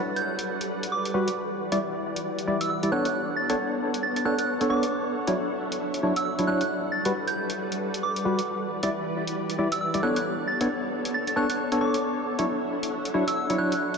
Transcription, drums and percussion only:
0.16 closed hi-hat soft
0.39 closed hi-hat medium
0.61 closed hi-hat soft
0.83 closed hi-hat medium
1.05 closed hi-hat soft
1.28 closed hi-hat medium
1.72 closed hi-hat medium
2.16 closed hi-hat medium
2.39 closed hi-hat soft
2.61 closed hi-hat medium
2.83 closed hi-hat soft
3.05 closed hi-hat medium
3.50 closed hi-hat medium
3.94 closed hi-hat medium
4.16 closed hi-hat soft
4.39 closed hi-hat medium
4.61 closed hi-hat soft
4.83 closed hi-hat medium
5.27 closed hi-hat medium
5.72 closed hi-hat medium
5.94 closed hi-hat soft
6.16 closed hi-hat medium
6.39 closed hi-hat soft
6.61 closed hi-hat medium
7.05 closed hi-hat medium
7.28 closed hi-hat soft
7.50 closed hi-hat medium
7.72 closed hi-hat soft
7.94 closed hi-hat medium
8.16 closed hi-hat soft
8.39 closed hi-hat medium
8.83 closed hi-hat medium
9.27 closed hi-hat medium
9.50 closed hi-hat soft
9.72 closed hi-hat medium
9.94 closed hi-hat soft
10.16 closed hi-hat medium
10.61 closed hi-hat medium
11.05 closed hi-hat medium
11.27 closed hi-hat soft
11.50 closed hi-hat medium
11.72 closed hi-hat medium
11.94 closed hi-hat medium
12.39 closed hi-hat medium
12.83 closed hi-hat medium
13.05 closed hi-hat medium
13.28 closed hi-hat medium
13.50 closed hi-hat soft
13.72 closed hi-hat medium
13.94 closed hi-hat soft

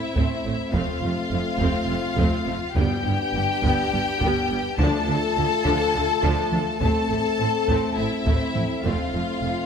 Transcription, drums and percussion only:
0.16 taiko medium
0.74 taiko medium
1.61 taiko medium
2.18 taiko medium
2.76 taiko medium
3.63 taiko medium
4.21 taiko medium
4.78 taiko medium
5.65 taiko medium
6.23 taiko medium
6.52 taiko mid soft
6.81 taiko medium
7.68 taiko medium
8.27 taiko medium
8.55 taiko mid medium
8.85 taiko medium

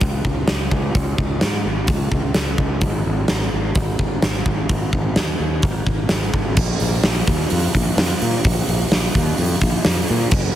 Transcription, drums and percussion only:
0.01 kick loud
0.01 open hi-hat medium
0.25 kick medium
0.48 snare loud
0.48 open hi-hat soft
0.71 kick medium
0.95 kick loud
0.95 open hi-hat soft
1.18 kick medium
1.41 snare loud
1.41 open hi-hat soft
1.52 snare soft
1.87 kick loud
1.87 open hi-hat medium
2.12 kick medium
2.34 snare loud
2.34 open hi-hat medium
2.47 snare soft
2.58 kick medium
2.81 kick loud
2.81 open hi-hat medium
3.28 snare loud
3.28 open hi-hat soft
3.40 snare soft
3.75 kick loud
3.75 open hi-hat soft
3.99 kick medium
4.22 snare loud
4.22 open hi-hat soft
4.34 snare soft
4.46 kick medium
4.69 kick loud
4.69 open hi-hat medium
4.93 kick medium
5.16 snare loud
5.16 open hi-hat medium
5.62 kick loud
5.62 open hi-hat medium
5.87 kick medium
6.09 snare loud
6.09 open hi-hat medium
6.21 snare soft
6.34 kick medium
6.57 kick loud
6.57 crash loud
6.80 open hi-hat medium
7.04 snare loud
7.04 open hi-hat medium
7.27 kick medium
7.27 open hi-hat medium
7.50 open hi-hat medium
7.75 kick medium
7.75 open hi-hat medium
7.98 snare loud
7.98 open hi-hat medium
8.22 open hi-hat medium
8.44 kick loud
8.44 open hi-hat medium
8.69 open hi-hat medium
8.92 snare loud
8.92 open hi-hat medium
9.15 kick medium
9.15 open hi-hat medium
9.38 open hi-hat medium
9.61 kick medium
9.61 open hi-hat medium
9.85 snare loud
9.85 open hi-hat medium
10.08 open hi-hat medium
10.31 kick loud
10.31 crash loud

